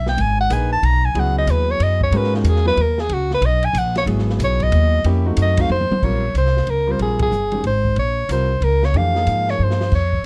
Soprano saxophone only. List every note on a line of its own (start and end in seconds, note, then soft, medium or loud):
0.09 0.23 G5 medium
0.21 0.40 G#5 loud
0.40 0.55 F#5 loud
0.53 0.72 G#5 loud
0.73 0.87 A5 loud
0.85 1.07 A#5 loud
1.05 1.21 G#5 medium
1.20 1.38 F#5 medium
1.38 1.52 D#5 medium
1.51 1.72 B4 medium
1.71 1.85 C#5 loud
1.83 2.02 D#5 medium
2.03 2.18 C#5 medium
2.17 2.35 B4 medium
2.36 2.50 D#4 soft
2.49 2.67 G#4 medium
2.68 2.83 B4 loud
2.81 3.02 A#4 medium
3.01 3.15 G#4 medium
3.13 3.32 F#4 medium
3.34 3.47 B4 loud
3.46 3.66 D#5 loud
3.65 3.80 G#5 loud
3.79 3.97 F#5 loud
3.98 4.04 C#5 medium
4.44 4.65 C#5 medium
4.63 5.06 D#5 loud
5.42 5.63 D#5 medium
5.61 5.71 F5 loud
5.71 6.05 C5 medium
6.04 6.36 C#5 medium
6.38 6.71 C5 medium
6.70 6.92 A#4 medium
6.91 7.01 C5 medium
7.02 7.20 G#4 medium
7.22 7.63 G#4 medium
7.67 7.96 C5 medium
7.99 8.28 C#5 medium
8.32 8.65 C5 medium
8.64 8.86 A#4 medium
8.85 8.99 C#5 medium
8.97 9.52 F5 loud
9.50 9.65 C#5 medium
9.64 9.94 C5 medium
9.95 10.26 C#5 medium